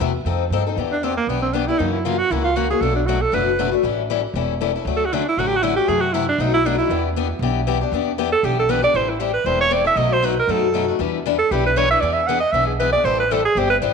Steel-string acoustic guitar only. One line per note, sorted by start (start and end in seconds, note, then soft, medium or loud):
0.00 0.10 C3 medium
0.00 0.11 E3 medium
0.00 0.11 A3 medium
0.00 0.11 E4 loud
0.00 0.11 F#4 medium
0.26 0.44 F3 medium
0.26 0.44 C4 medium
0.26 0.44 D#4 medium
0.26 0.44 A4 medium
0.52 0.62 F3 medium
0.52 0.62 C4 medium
0.52 0.62 D#4 medium
0.52 0.63 A4 loud
0.67 0.78 C4 medium
0.67 0.78 D#4 medium
0.67 0.77 A4 medium
0.78 0.95 E3 medium
0.78 0.96 B3 medium
0.78 0.96 D4 medium
0.78 0.96 G4 medium
1.03 1.13 E3 medium
1.03 1.13 B3 medium
1.03 1.13 D4 medium
1.03 1.13 G4 medium
1.29 1.47 E3 medium
1.29 1.47 B3 medium
1.29 1.47 D4 medium
1.29 1.47 G4 medium
1.53 1.64 E3 medium
1.53 1.64 B3 medium
1.53 1.64 D4 medium
1.53 1.65 G4 medium
1.68 1.79 B3 soft
1.68 1.80 D4 soft
1.68 1.79 G4 medium
1.79 1.97 C#3 medium
1.79 1.97 E3 medium
1.79 1.97 A#3 medium
1.79 1.98 C#4 medium
1.79 1.98 F#4 medium
2.05 2.15 C#3 medium
2.05 2.15 E3 medium
2.05 2.15 A#3 medium
2.05 2.15 C#4 medium
2.05 2.16 F#4 loud
2.31 2.48 C#3 medium
2.31 2.49 E3 medium
2.31 2.49 A#3 medium
2.31 2.49 C#4 medium
2.31 2.49 F#4 medium
2.56 2.66 C#3 medium
2.56 2.66 E3 medium
2.56 2.66 A#3 medium
2.56 2.66 C#4 medium
2.56 2.66 F#4 medium
2.70 2.82 A#3 soft
2.70 2.82 C#4 medium
2.70 2.81 F#4 medium
2.82 3.00 B2 medium
2.82 3.00 F#3 medium
2.82 3.00 A3 medium
2.82 3.00 D4 medium
2.82 3.00 F#4 medium
3.08 3.17 B2 medium
3.08 3.18 F#3 medium
3.08 3.18 A3 medium
3.08 3.18 D4 loud
3.08 3.18 F#4 loud
3.32 3.50 B2 medium
3.32 3.51 F#3 medium
3.32 3.51 A3 medium
3.32 3.51 D4 medium
3.32 3.51 F#4 medium
3.59 3.69 B2 medium
3.59 3.68 F#3 medium
3.59 3.69 A3 loud
3.59 3.69 D4 loud
3.59 3.69 F#4 loud
3.72 3.84 A3 soft
3.72 3.84 D4 soft
3.72 3.83 F#4 medium
3.83 4.01 E3 medium
3.83 4.02 G3 medium
3.83 4.02 C#4 medium
3.83 4.02 E4 medium
3.83 4.02 A4 medium
4.10 4.19 E3 medium
4.10 4.20 G3 medium
4.10 4.20 C#4 medium
4.10 4.20 E4 medium
4.10 4.20 A4 loud
4.35 4.53 E3 medium
4.35 4.53 G3 medium
4.35 4.53 C#4 medium
4.35 4.53 E4 medium
4.35 4.54 A4 medium
4.61 4.70 E3 medium
4.61 4.71 G3 medium
4.61 4.71 C#4 medium
4.61 4.71 E4 medium
4.61 4.71 A4 medium
4.76 4.86 C#4 soft
4.76 4.87 E4 soft
4.76 4.86 A4 medium
4.87 5.04 D3 medium
4.87 5.04 F#3 medium
4.87 5.05 A3 medium
4.87 5.05 C#4 medium
4.87 5.05 F#4 medium
5.13 5.22 D3 medium
5.13 5.22 F#3 loud
5.13 5.22 A3 medium
5.13 5.23 C#4 medium
5.13 5.23 F#4 medium
5.39 5.56 D3 medium
5.39 5.56 F#3 medium
5.39 5.56 A3 medium
5.39 5.56 C#4 medium
5.39 5.56 F#4 medium
5.63 5.73 D3 medium
5.63 5.73 F#3 medium
5.63 5.73 A3 medium
5.63 5.73 C#4 medium
5.63 5.73 F#4 loud
5.77 5.87 A3 soft
5.77 5.88 C#4 medium
5.77 5.88 F#4 medium
5.88 6.06 C3 medium
5.88 6.06 E3 medium
5.88 6.06 A3 medium
5.88 6.07 E4 medium
5.88 6.07 F#4 medium
6.14 6.24 C3 medium
6.14 6.24 E3 loud
6.14 6.24 A3 loud
6.14 6.24 E4 medium
6.14 6.24 F#4 loud
6.40 6.57 B2 medium
6.40 6.58 F#3 medium
6.40 6.58 A3 medium
6.40 6.58 D#4 medium
6.40 6.58 F#4 medium
6.65 6.75 B2 medium
6.65 6.75 F#3 medium
6.65 6.76 A3 medium
6.65 6.75 D#4 medium
6.65 6.76 F#4 loud
6.78 6.90 A3 soft
6.78 6.90 D#4 soft
6.78 6.90 F#4 medium
6.90 7.08 E3 medium
6.90 7.09 B3 medium
6.90 7.09 D4 medium
6.90 7.09 G4 medium
7.16 7.26 E3 medium
7.16 7.27 B3 loud
7.16 7.27 D4 medium
7.16 7.27 G4 medium
7.42 7.60 E3 medium
7.42 7.60 B3 medium
7.42 7.60 D4 medium
7.42 7.60 G4 medium
7.67 7.77 E3 loud
7.67 7.77 B3 medium
7.67 7.78 D4 medium
7.67 7.78 G4 loud
7.81 7.92 B3 medium
7.81 7.93 D4 medium
7.81 7.92 G4 medium
7.93 8.11 E3 medium
7.93 8.11 B3 medium
7.93 8.11 D4 medium
7.93 8.12 G4 medium
8.18 8.28 E3 medium
8.18 8.28 B3 medium
8.18 8.29 D4 medium
8.18 8.29 G4 loud
8.44 8.62 E3 medium
8.44 8.62 B3 medium
8.44 8.63 D4 medium
8.44 8.62 G4 medium
8.69 8.79 E3 medium
8.69 8.79 B3 loud
8.69 8.80 D4 medium
8.69 8.80 G4 loud
8.82 8.95 B3 medium
8.82 8.94 D4 medium
8.82 8.94 G4 medium
8.94 9.13 E3 medium
8.94 9.13 G3 medium
8.94 9.13 C4 medium
8.94 9.13 E4 medium
8.94 9.13 A4 medium
9.20 9.30 E3 medium
9.20 9.30 G3 medium
9.20 9.31 C4 medium
9.20 9.31 E4 medium
9.20 9.31 A4 medium
9.46 9.64 E3 medium
9.46 9.64 G3 medium
9.46 9.64 C4 medium
9.46 9.64 E4 medium
9.46 9.65 A4 medium
9.71 9.81 E3 medium
9.71 9.81 G3 medium
9.71 9.81 C4 medium
9.71 9.82 E4 medium
9.71 9.82 A4 medium
9.84 9.97 C4 soft
9.84 9.97 E4 medium
9.84 9.96 A4 medium
9.96 10.15 B2 medium
9.96 10.15 F#3 medium
9.96 10.15 A3 medium
9.96 10.15 D#4 medium
9.96 10.16 F#4 medium
10.23 10.33 B2 medium
10.23 10.33 F#3 medium
10.23 10.33 A3 medium
10.23 10.33 D#4 medium
10.23 10.34 F#4 medium
10.49 10.67 B2 medium
10.49 10.67 F#3 medium
10.49 10.67 A3 medium
10.49 10.67 D#4 medium
10.49 10.67 F#4 medium
10.74 10.84 B2 medium
10.74 10.84 F#3 medium
10.74 10.84 A3 medium
10.74 10.85 D#4 loud
10.74 10.85 F#4 loud
10.88 10.99 A3 soft
10.88 11.00 D#4 soft
10.88 10.99 F#4 medium
10.99 11.17 E3 medium
10.99 11.18 G3 medium
10.99 11.18 D4 medium
10.99 11.18 E4 medium
10.99 11.18 B4 medium
11.26 11.36 E3 medium
11.26 11.36 G3 medium
11.26 11.36 D4 loud
11.26 11.36 E4 medium
11.26 11.36 B4 medium
11.52 11.69 E3 medium
11.52 11.69 G3 medium
11.52 11.70 D4 medium
11.52 11.70 E4 medium
11.52 11.70 B4 medium
11.76 11.86 E3 medium
11.76 11.87 G3 medium
11.76 11.87 D4 medium
11.76 11.87 E4 medium
11.76 11.87 B4 loud
11.91 12.02 D4 soft
11.91 12.02 E4 medium
11.91 12.02 B4 medium
12.02 12.20 E3 medium
12.02 12.21 B3 medium
12.02 12.21 D4 medium
12.02 12.21 G#4 medium
12.29 12.38 E3 medium
12.29 12.38 B3 medium
12.29 12.39 D4 loud
12.29 12.39 G#4 loud
12.54 12.72 E3 medium
12.54 12.72 B3 medium
12.54 12.72 D4 medium
12.54 12.72 G#4 medium
12.80 12.89 E3 medium
12.80 12.90 B3 medium
12.80 12.90 D4 medium
12.80 12.90 G#4 medium
12.93 13.05 B3 soft
12.93 13.05 D4 soft
12.93 13.04 G#4 medium
13.05 13.23 E3 medium
13.05 13.23 G3 medium
13.05 13.23 C4 medium
13.05 13.23 E4 medium
13.05 13.24 A4 medium
13.31 13.41 E3 medium
13.31 13.41 G3 medium
13.31 13.41 C4 medium
13.31 13.41 E4 medium
13.31 13.41 A4 medium
13.56 13.74 E3 medium
13.56 13.74 G3 medium
13.56 13.75 C4 medium
13.56 13.74 E4 medium
13.56 13.75 A4 medium
13.82 13.92 E3 loud
13.82 13.92 G3 medium
13.82 13.92 C4 loud
13.82 13.92 E4 medium
13.82 13.92 A4 medium